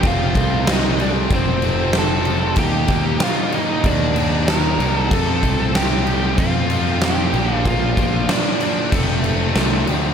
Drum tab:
CC |xxxxxxxx|xxxxxxxx|xxxxxxxx|xxxxxxxx|
SD |--o---o-|--o---o-|--o---o-|--o---o-|
BD |oo--o---|oo--o---|oo--o---|oo--o---|